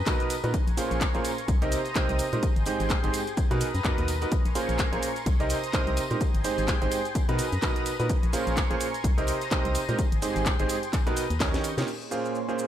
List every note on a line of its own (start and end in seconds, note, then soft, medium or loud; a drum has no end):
0.00 0.53 B4 medium
0.00 0.53 A#5 medium
0.00 0.53 D#6 medium
0.06 0.33 B2 medium
0.06 0.33 B3 medium
0.06 0.33 D#4 medium
0.06 0.33 F#4 medium
0.06 0.33 A#4 medium
0.06 0.33 B4 loud
0.06 kick loud
0.06 clap loud
0.06 closed hi-hat medium
0.06 tambourine medium
0.06 shaker soft
0.20 closed hi-hat soft
0.20 tambourine soft
0.20 shaker soft
0.30 open hi-hat loud
0.30 tambourine loud
0.30 shaker medium
0.44 0.57 A#2 medium
0.44 0.53 B3 medium
0.44 0.53 D#4 medium
0.44 0.53 F#4 medium
0.44 0.53 A#4 medium
0.44 0.53 B4 medium
0.44 closed hi-hat soft
0.44 tambourine soft
0.44 shaker soft
0.54 1.47 A#4 medium
0.54 1.47 G#5 medium
0.54 1.47 C6 medium
0.54 1.47 C#6 medium
0.54 kick loud
0.54 closed hi-hat medium
0.54 tambourine medium
0.54 shaker soft
0.67 0.80 A#1 medium
0.67 closed hi-hat soft
0.67 tambourine soft
0.67 shaker soft
0.77 1.04 A#2 medium
0.77 1.04 C#4 medium
0.77 1.04 F4 medium
0.77 1.04 G#4 medium
0.77 1.04 A#4 medium
0.77 1.04 C5 medium
0.77 open hi-hat loud
0.77 tambourine loud
0.77 shaker medium
0.91 1.04 A#1 medium
0.91 closed hi-hat soft
0.91 tambourine soft
0.91 shaker soft
1.01 kick loud
1.01 clap loud
1.01 closed hi-hat medium
1.01 tambourine medium
1.01 shaker soft
1.14 1.21 A#1 medium
1.14 1.30 A#2 medium
1.14 1.30 C#4 medium
1.14 1.30 F4 medium
1.14 1.30 G#4 medium
1.14 1.30 A#4 medium
1.14 1.30 C5 medium
1.14 closed hi-hat soft
1.14 tambourine soft
1.14 shaker soft
1.24 open hi-hat loud
1.24 tambourine loud
1.24 shaker medium
1.38 closed hi-hat soft
1.38 tambourine soft
1.38 shaker soft
1.48 1.77 C2 loud
1.48 2.42 C5 medium
1.48 2.42 A#5 medium
1.48 2.42 D#6 medium
1.48 kick loud
1.48 closed hi-hat medium
1.48 tambourine medium
1.48 shaker soft
1.62 1.77 C3 medium
1.62 1.77 C4 medium
1.62 1.77 D#4 medium
1.62 1.77 G4 medium
1.62 1.77 A#4 medium
1.62 1.77 D#5 loud
1.62 closed hi-hat soft
1.62 tambourine soft
1.62 shaker soft
1.72 open hi-hat loud
1.72 tambourine loud
1.72 shaker medium
1.85 closed hi-hat soft
1.85 tambourine soft
1.85 shaker soft
1.95 2.22 C3 medium
1.95 2.22 C4 medium
1.95 2.22 D#4 medium
1.95 2.22 G4 medium
1.95 2.22 A#4 medium
1.95 2.22 C5 loud
1.95 kick loud
1.95 clap loud
1.95 closed hi-hat medium
1.95 tambourine medium
1.95 shaker soft
2.09 2.22 C2 loud
2.09 closed hi-hat soft
2.09 tambourine soft
2.09 shaker soft
2.19 open hi-hat loud
2.19 tambourine loud
2.19 shaker medium
2.32 2.42 G#2 medium
2.32 2.39 A#2 medium
2.32 2.42 C4 medium
2.32 2.42 D#4 medium
2.32 2.42 G4 medium
2.32 2.42 A#4 medium
2.32 2.42 C5 medium
2.32 closed hi-hat soft
2.32 tambourine soft
2.32 shaker soft
2.43 3.36 G#4 medium
2.43 3.36 G5 medium
2.43 3.36 C6 medium
2.43 kick loud
2.43 closed hi-hat medium
2.43 tambourine medium
2.43 shaker soft
2.56 2.69 G#1 loud
2.56 closed hi-hat soft
2.56 tambourine soft
2.56 shaker soft
2.66 2.93 G#2 medium
2.66 2.92 C4 medium
2.66 2.93 D#4 medium
2.66 2.92 G4 medium
2.66 2.93 G#4 medium
2.66 2.92 C5 medium
2.66 open hi-hat loud
2.66 tambourine loud
2.66 shaker medium
2.80 2.93 G#1 medium
2.80 closed hi-hat soft
2.80 tambourine soft
2.80 shaker soft
2.89 kick loud
2.89 clap loud
2.89 closed hi-hat medium
2.89 tambourine medium
2.89 shaker soft
3.03 3.10 G#1 medium
3.03 3.19 G#2 medium
3.03 3.19 C4 medium
3.03 3.19 D#4 medium
3.03 3.19 G4 medium
3.03 3.19 G#4 medium
3.03 3.19 C5 medium
3.03 closed hi-hat soft
3.03 tambourine soft
3.03 shaker soft
3.14 open hi-hat loud
3.14 tambourine medium
3.14 shaker medium
3.27 closed hi-hat soft
3.27 tambourine soft
3.27 shaker soft
3.37 4.31 B4 medium
3.37 4.31 A#5 medium
3.37 4.31 D#6 medium
3.37 kick loud
3.37 closed hi-hat medium
3.37 tambourine medium
3.37 shaker soft
3.51 3.66 B2 medium
3.51 3.64 B2 loud
3.51 3.66 B3 medium
3.51 3.66 D#4 medium
3.51 3.66 F#4 medium
3.51 3.66 A#4 medium
3.51 3.66 B4 loud
3.51 closed hi-hat soft
3.51 tambourine soft
3.51 shaker soft
3.61 open hi-hat loud
3.61 tambourine medium
3.61 shaker medium
3.74 3.81 F#2 medium
3.74 closed hi-hat soft
3.74 tambourine soft
3.74 shaker soft
3.84 3.93 F#2 medium
3.84 4.11 B2 medium
3.84 4.11 B3 medium
3.84 4.11 D#4 medium
3.84 4.11 F#4 medium
3.84 4.11 A#4 medium
3.84 4.11 B4 loud
3.84 kick loud
3.84 clap loud
3.84 closed hi-hat medium
3.84 tambourine medium
3.84 shaker soft
3.98 4.25 D#2 loud
3.98 closed hi-hat soft
3.98 tambourine soft
3.98 shaker soft
4.08 open hi-hat loud
4.08 tambourine loud
4.08 shaker medium
4.22 4.31 B3 medium
4.22 4.31 D#4 medium
4.22 4.31 F#4 medium
4.22 4.31 A#4 medium
4.22 4.31 B4 medium
4.22 closed hi-hat soft
4.22 tambourine soft
4.22 shaker soft
4.32 5.25 A#4 medium
4.32 5.25 G#5 medium
4.32 5.25 C6 medium
4.32 5.25 C#6 medium
4.32 kick loud
4.32 closed hi-hat medium
4.32 tambourine medium
4.32 shaker soft
4.45 4.58 A#1 medium
4.45 closed hi-hat soft
4.45 tambourine soft
4.45 shaker soft
4.55 4.82 A#2 medium
4.55 4.82 C#4 medium
4.55 4.82 F4 medium
4.55 4.82 G#4 medium
4.55 4.82 A#4 medium
4.55 4.82 C5 loud
4.55 open hi-hat loud
4.55 tambourine loud
4.55 shaker medium
4.69 4.82 A#1 medium
4.69 closed hi-hat soft
4.69 tambourine soft
4.69 shaker soft
4.78 kick loud
4.78 clap loud
4.78 closed hi-hat medium
4.78 tambourine medium
4.78 shaker soft
4.92 4.99 A#1 medium
4.92 5.08 A#2 medium
4.92 5.08 C#4 medium
4.92 5.08 F4 medium
4.92 5.08 G#4 medium
4.92 5.08 A#4 medium
4.92 5.08 C5 medium
4.92 closed hi-hat soft
4.92 tambourine soft
4.92 shaker soft
5.02 open hi-hat loud
5.02 tambourine loud
5.02 shaker medium
5.16 closed hi-hat soft
5.16 tambourine soft
5.16 shaker soft
5.26 5.55 C2 loud
5.26 6.20 C5 medium
5.26 6.20 A#5 medium
5.26 6.20 D#6 medium
5.26 kick loud
5.26 closed hi-hat medium
5.26 tambourine soft
5.26 shaker soft
5.40 5.55 C3 medium
5.40 5.55 C4 medium
5.40 5.55 D#4 medium
5.40 5.55 G4 medium
5.40 5.55 A#4 medium
5.40 5.55 D#5 loud
5.40 closed hi-hat soft
5.40 tambourine soft
5.40 shaker soft
5.50 open hi-hat loud
5.50 tambourine medium
5.50 shaker medium
5.64 closed hi-hat soft
5.64 tambourine soft
5.64 shaker soft
5.73 6.00 C3 medium
5.73 6.00 C4 medium
5.73 6.00 D#4 medium
5.73 6.00 G4 medium
5.73 6.00 A#4 medium
5.73 6.00 C5 medium
5.73 kick loud
5.73 clap loud
5.73 closed hi-hat medium
5.73 tambourine medium
5.73 shaker soft
5.87 6.00 C2 loud
5.87 closed hi-hat soft
5.87 tambourine soft
5.87 shaker soft
5.97 open hi-hat loud
5.97 tambourine medium
5.97 shaker medium
6.10 6.19 G#2 medium
6.10 6.17 A#2 medium
6.10 6.19 C4 medium
6.10 6.20 D#4 medium
6.10 6.19 G4 medium
6.10 6.19 A#4 medium
6.10 6.20 C5 medium
6.10 closed hi-hat soft
6.10 tambourine soft
6.10 shaker soft
6.21 7.14 G#4 medium
6.21 7.14 G5 medium
6.21 7.14 C6 medium
6.21 kick loud
6.21 closed hi-hat medium
6.21 tambourine soft
6.21 shaker soft
6.34 6.47 G#1 medium
6.34 closed hi-hat soft
6.34 tambourine soft
6.34 shaker soft
6.44 6.71 G#2 medium
6.44 6.71 C4 medium
6.44 6.71 D#4 medium
6.44 6.71 G4 medium
6.44 6.71 G#4 medium
6.44 6.71 C5 loud
6.44 open hi-hat medium
6.44 tambourine medium
6.44 shaker medium
6.58 6.71 G#1 medium
6.58 closed hi-hat soft
6.58 tambourine soft
6.58 shaker soft
6.68 kick loud
6.68 clap loud
6.68 closed hi-hat medium
6.68 tambourine medium
6.68 shaker soft
6.82 6.88 G#1 medium
6.82 6.97 G#2 medium
6.82 6.97 C4 medium
6.82 6.97 D#4 medium
6.82 6.97 G4 medium
6.82 6.97 G#4 medium
6.82 6.97 C5 loud
6.82 closed hi-hat soft
6.82 tambourine soft
6.82 shaker soft
6.92 open hi-hat loud
6.92 tambourine medium
6.92 shaker medium
7.05 closed hi-hat soft
7.05 tambourine soft
7.05 shaker soft
7.15 8.09 B4 medium
7.15 8.09 A#5 medium
7.15 8.09 D#6 medium
7.15 kick loud
7.15 closed hi-hat medium
7.15 tambourine medium
7.15 shaker soft
7.29 7.44 B2 medium
7.29 7.42 B2 loud
7.29 7.44 B3 medium
7.29 7.44 D#4 medium
7.29 7.44 F#4 medium
7.29 7.44 A#4 medium
7.29 7.44 B4 loud
7.29 closed hi-hat soft
7.29 tambourine soft
7.29 shaker soft
7.39 open hi-hat loud
7.39 tambourine loud
7.39 shaker medium
7.52 7.58 F#2 loud
7.52 closed hi-hat soft
7.52 tambourine soft
7.52 shaker soft
7.62 7.89 B2 medium
7.62 7.89 B3 medium
7.62 7.89 D#4 medium
7.62 7.89 F#4 medium
7.62 7.89 A#4 medium
7.62 7.89 B4 loud
7.62 kick loud
7.62 clap loud
7.62 closed hi-hat medium
7.62 tambourine medium
7.62 shaker soft
7.76 closed hi-hat soft
7.76 shaker soft
7.86 open hi-hat loud
7.86 tambourine loud
7.86 shaker medium
8.00 8.13 A#2 medium
8.00 8.08 B3 medium
8.00 8.08 D#4 medium
8.00 8.08 F#4 medium
8.00 8.08 A#4 medium
8.00 8.08 B4 medium
8.00 closed hi-hat soft
8.00 tambourine soft
8.00 shaker soft
8.10 9.03 A#4 medium
8.10 9.03 G#5 medium
8.10 9.03 C6 medium
8.10 9.03 C#6 medium
8.10 kick loud
8.10 closed hi-hat medium
8.10 tambourine soft
8.10 shaker soft
8.23 8.36 A#1 medium
8.23 closed hi-hat soft
8.23 tambourine soft
8.23 shaker soft
8.33 8.59 A#2 medium
8.33 8.59 C#4 medium
8.33 8.59 F4 medium
8.33 8.59 G#4 medium
8.33 8.59 A#4 medium
8.33 8.59 C5 loud
8.33 open hi-hat loud
8.33 tambourine medium
8.33 shaker medium
8.47 8.60 A#1 medium
8.47 closed hi-hat soft
8.47 tambourine soft
8.47 shaker soft
8.57 kick loud
8.57 clap loud
8.57 closed hi-hat medium
8.57 tambourine medium
8.57 shaker soft
8.70 8.77 A#1 medium
8.70 8.86 A#2 medium
8.70 8.85 C#4 medium
8.70 8.85 F4 medium
8.70 8.85 G#4 medium
8.70 8.86 A#4 medium
8.70 8.85 C5 loud
8.70 closed hi-hat soft
8.70 tambourine soft
8.70 shaker soft
8.80 open hi-hat loud
8.80 tambourine loud
8.80 shaker medium
8.94 closed hi-hat soft
8.94 tambourine soft
8.94 shaker soft
9.04 9.33 C2 loud
9.04 9.98 C5 medium
9.04 9.98 A#5 medium
9.04 9.98 D#6 medium
9.04 kick loud
9.04 closed hi-hat medium
9.04 tambourine soft
9.04 shaker soft
9.18 9.33 C3 medium
9.18 9.33 C4 medium
9.18 9.33 D#4 medium
9.18 9.33 G4 medium
9.18 9.33 A#4 medium
9.18 9.33 D#5 loud
9.18 closed hi-hat soft
9.18 tambourine soft
9.18 shaker soft
9.27 open hi-hat loud
9.27 tambourine loud
9.27 shaker medium
9.41 closed hi-hat soft
9.41 tambourine soft
9.41 shaker soft
9.51 9.78 C3 medium
9.51 9.78 C4 medium
9.51 9.78 D#4 medium
9.51 9.78 G4 medium
9.51 9.78 A#4 medium
9.51 9.78 C5 loud
9.51 kick loud
9.51 clap loud
9.51 closed hi-hat medium
9.51 tambourine medium
9.51 shaker soft
9.65 9.78 C2 loud
9.65 closed hi-hat soft
9.65 tambourine soft
9.65 shaker soft
9.75 open hi-hat loud
9.75 tambourine medium
9.75 shaker medium
9.89 9.97 G#2 medium
9.89 9.95 A#2 medium
9.89 9.97 C4 medium
9.89 9.97 D#4 medium
9.89 9.97 G4 medium
9.89 9.97 A#4 medium
9.89 9.97 C5 medium
9.89 closed hi-hat soft
9.89 tambourine soft
9.89 shaker soft
9.99 10.92 G#4 medium
9.99 10.92 G5 medium
9.99 10.92 C6 medium
9.99 kick loud
9.99 closed hi-hat medium
9.99 tambourine medium
9.99 shaker soft
10.12 10.25 G#1 medium
10.12 closed hi-hat soft
10.12 tambourine soft
10.12 shaker soft
10.22 10.48 G#2 medium
10.22 10.48 C4 medium
10.22 10.48 D#4 medium
10.22 10.48 G4 medium
10.22 10.48 G#4 medium
10.22 10.48 C5 medium
10.22 open hi-hat loud
10.22 tambourine medium
10.22 shaker medium
10.36 10.49 G#1 medium
10.36 closed hi-hat soft
10.36 tambourine soft
10.36 shaker soft
10.46 kick loud
10.46 clap loud
10.46 closed hi-hat medium
10.46 tambourine medium
10.46 shaker soft
10.59 10.66 G#1 medium
10.59 10.74 G#2 medium
10.59 10.74 C4 medium
10.59 10.74 D#4 medium
10.59 10.74 G4 medium
10.59 10.74 G#4 medium
10.59 10.74 C5 loud
10.59 closed hi-hat soft
10.59 tambourine soft
10.59 shaker soft
10.69 open hi-hat loud
10.69 tambourine medium
10.69 shaker medium
10.83 closed hi-hat soft
10.83 tambourine soft
10.83 shaker soft
10.93 11.40 B4 medium
10.93 11.40 A#5 medium
10.93 11.40 D#6 medium
10.93 kick loud
10.93 clap medium
10.93 closed hi-hat medium
10.93 tambourine medium
10.93 shaker soft
11.07 11.22 B2 loud
11.07 11.22 B3 medium
11.07 11.22 D#4 medium
11.07 11.22 F#4 medium
11.07 11.22 A#4 medium
11.07 11.22 B4 loud
11.07 closed hi-hat soft
11.07 tambourine soft
11.07 shaker soft
11.16 open hi-hat loud
11.16 tambourine medium
11.16 shaker medium
11.30 11.58 D#2 medium
11.30 closed hi-hat soft
11.30 tambourine soft
11.30 shaker soft
11.40 11.67 D#3 medium
11.40 11.67 C#4 medium
11.40 11.67 D#4 medium
11.40 11.67 G4 medium
11.40 11.67 A#4 medium
11.40 11.67 C#5 loud
11.40 11.87 D#5 medium
11.40 11.87 C#6 medium
11.40 11.87 G6 medium
11.40 kick loud
11.40 snare medium
11.40 clap loud
11.40 closed hi-hat medium
11.40 tambourine medium
11.40 shaker soft
11.54 snare medium
11.54 closed hi-hat soft
11.54 tambourine soft
11.54 shaker soft
11.64 open hi-hat medium
11.64 tambourine medium
11.64 shaker medium
11.78 11.86 A#2 medium
11.78 11.84 C3 loud
11.78 11.86 C#4 medium
11.78 11.86 D#4 medium
11.78 11.86 G4 medium
11.78 11.86 A#4 medium
11.78 11.86 C#5 medium
11.78 snare medium
11.78 closed hi-hat soft
11.78 tambourine soft
11.78 shaker soft
11.88 12.67 A#3 medium
11.88 12.67 G#4 medium
11.88 12.67 C#5 medium
11.88 12.67 C6 medium
11.88 crash medium
11.88 shaker soft
12.01 shaker soft
12.11 12.37 A#2 medium
12.11 12.37 C#4 medium
12.11 12.37 F4 medium
12.11 12.37 G#4 medium
12.11 12.37 A#4 medium
12.11 12.37 C5 medium
12.11 shaker medium
12.25 shaker soft
12.35 shaker soft
12.48 12.64 A#2 medium
12.48 12.63 C#4 medium
12.48 12.64 F4 medium
12.48 12.64 G#4 medium
12.48 12.64 A#4 medium
12.48 12.64 C5 medium
12.48 shaker soft
12.59 shaker medium